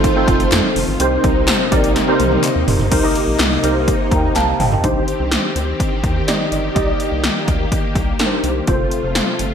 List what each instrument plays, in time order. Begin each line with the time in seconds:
Already playing: string machine D#3 A3 F4, tine electric piano C4 D#4 F4 A4 C5
0.04 kick, closed hi-hat
0.16 tine electric piano C4 D#4 F4 A4 C5
0.28 analog synth bass F1, kick, closed hi-hat
0.40 closed hi-hat
0.52 analog synth bass F2, snare, clap, closed hi-hat, tambourine
0.76 analog synth bass F1, open hi-hat
0.88 analog synth bass G1
1.00 analog synth bass C2, string machine C3 A#3 D#4, tine electric piano C4 D#4 G4 A#4 C5, closed hi-hat
1.24 analog synth bass C2, kick, closed hi-hat
1.48 snare, clap, closed hi-hat, tambourine
1.72 analog synth bass A#1, tine electric piano C4 D#4 G4 A#4 D5, kick, closed hi-hat
1.84 closed hi-hat
1.96 snare, closed hi-hat
2.07 tine electric piano C4 D#4 G4 A#4 C5
2.20 analog synth bass C2, closed hi-hat, high tom
2.32 high tom
2.44 clap, closed hi-hat
2.56 analog synth bass D#2
2.67 analog synth bass F1, floor tom, open hi-hat
2.79 analog synth bass G1, floor tom
2.91 analog synth bass C2, string machine C3 A#3 D#4, tine electric piano D#4 G4 A#4 C5, kick, closed hi-hat, crash
3.03 tine electric piano D#4 G4 A#4 D#5
3.15 closed hi-hat
3.27 analog synth bass A#1
3.39 analog synth bass C2, snare, clap, closed hi-hat
3.63 analog synth bass C2, tine electric piano D#4 G4 A#4 C5, closed hi-hat
3.88 kick, closed hi-hat
4.11 analog synth bass D#2, tine electric piano G5 A#5, kick, closed hi-hat
4.36 analog synth bass C2, tine electric piano F5 A5, snare, clap, closed hi-hat
4.59 analog synth bass G1, tine electric piano D#5 G5, mid tom, open hi-hat
4.72 floor tom
4.83 analog synth bass C2, string machine D#3 C4 G4, tine electric piano D4 D#4 G4 C5, kick, closed hi-hat
5.08 closed hi-hat
5.20 analog synth bass C2
5.32 snare, closed hi-hat
5.56 analog synth bass D2, closed hi-hat
5.80 kick, closed hi-hat
6.03 analog synth bass D#2, kick, closed hi-hat
6.27 tine electric piano D#4 G4 D5 D#5, snare, closed hi-hat
6.52 analog synth bass G1, closed hi-hat
6.75 analog synth bass C2, string machine A#3, tine electric piano D#4 G4 D5 D#5, kick, closed hi-hat
7.00 closed hi-hat
7.12 analog synth bass C2
7.24 snare, closed hi-hat
7.48 analog synth bass D2, kick, closed hi-hat
7.72 kick, closed hi-hat
7.95 analog synth bass C2, kick, closed hi-hat
8.19 tine electric piano D4 D#4 G4 A#4, snare, closed hi-hat
8.26 tine electric piano C5
8.43 analog synth bass C2, closed hi-hat
8.67 analog synth bass F1, string machine C3 A3 F4, tine electric piano C4 F4 A4 C5, kick, closed hi-hat
8.91 closed hi-hat
9.03 analog synth bass F1
9.15 snare, closed hi-hat
9.39 analog synth bass G1, closed hi-hat